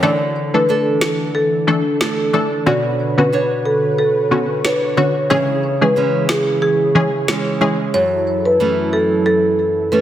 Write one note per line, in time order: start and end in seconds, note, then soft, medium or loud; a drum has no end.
0.00 3.37 D3 medium
0.00 0.50 E3 medium
0.00 2.64 E3 medium
0.00 0.68 A3 medium
0.00 0.50 A3 medium
0.00 0.10 C#4 medium
0.00 2.64 D4 medium
0.00 0.50 D4 medium
0.00 0.69 A4 medium
0.00 2.64 A4 medium
0.00 0.50 A4 loud
0.00 0.19 D5 medium
0.54 0.66 E3 medium
0.54 0.66 A3 medium
0.54 0.67 D4 medium
0.54 0.67 A4 medium
0.54 0.82 B4 medium
0.69 1.99 A3 medium
0.69 2.01 D4 medium
0.69 2.01 A4 medium
1.01 1.30 A4 medium
1.01 snare loud
1.35 1.83 A4 medium
1.67 1.83 E3 medium
1.67 1.83 A3 medium
1.67 1.83 D4 medium
1.67 1.83 A4 medium
2.01 2.74 A3 medium
2.01 2.33 D4 medium
2.01 2.75 A4 medium
2.01 snare medium
2.33 2.49 E3 medium
2.33 2.49 A3 medium
2.33 3.32 D4 medium
2.33 2.49 D4 medium
2.33 2.49 A4 medium
2.66 5.30 B2 medium
2.66 3.13 D3 medium
2.66 5.28 D3 medium
2.66 3.14 B3 medium
2.66 3.14 C#4 medium
2.66 3.14 F#4 loud
2.66 5.28 B4 medium
2.66 7.90 C#5 medium
2.66 2.82 D5 medium
3.18 3.30 D3 medium
3.18 3.30 B3 medium
3.18 3.30 C#4 medium
3.18 3.30 F#4 medium
3.18 3.46 B4 medium
3.32 4.63 D4 medium
3.32 4.64 F#4 medium
3.32 4.65 C#5 medium
3.66 3.94 A4 medium
3.98 4.47 A4 medium
4.31 4.47 D3 medium
4.31 4.47 B3 medium
4.31 4.47 C#4 medium
4.31 4.47 F#4 medium
4.64 5.38 D4 medium
4.64 4.96 F#4 medium
4.64 4.80 B4 medium
4.64 8.15 C#5 medium
4.64 snare loud
4.97 5.13 D3 medium
4.97 5.13 B3 medium
4.97 5.13 C#4 medium
4.97 5.38 F#4 medium
4.97 5.13 F#4 medium
4.97 5.13 C#5 medium
5.30 7.94 C#3 medium
5.30 5.77 E3 medium
5.30 7.91 E3 medium
5.30 5.77 G#3 medium
5.30 5.77 C#4 medium
5.30 7.91 G#4 medium
5.30 5.77 G#4 loud
5.30 5.46 C#5 medium
5.81 5.94 E3 medium
5.81 5.94 G#3 medium
5.81 5.94 C#4 medium
5.81 5.94 G#4 medium
5.81 6.10 B4 medium
5.96 7.28 E3 medium
5.96 7.27 G#3 medium
5.96 7.29 C#4 medium
6.29 6.57 G#4 medium
6.29 snare loud
6.62 7.10 G#4 medium
6.95 7.11 E3 medium
6.95 7.11 G#3 medium
6.95 7.11 C#4 medium
6.95 7.11 G#4 medium
7.28 8.60 E3 medium
7.28 7.60 G#3 medium
7.28 8.61 C#4 medium
7.28 snare loud
7.61 7.77 E3 medium
7.61 7.77 G#3 medium
7.61 8.01 G#3 medium
7.61 7.77 C#4 medium
7.61 7.77 G#4 medium
7.94 10.01 F#2 medium
7.94 10.01 F#3 medium
7.94 10.01 E4 medium
7.94 10.01 A4 medium
7.94 8.10 C#5 medium
8.45 8.74 B4 medium
8.60 9.91 E3 medium
8.60 9.92 A3 medium
8.60 9.92 C#4 medium
8.93 9.21 A4 medium
9.26 9.74 A4 medium
9.92 10.01 E3 medium
9.92 10.01 A3 medium
9.92 10.01 C#4 medium
9.92 10.01 B4 medium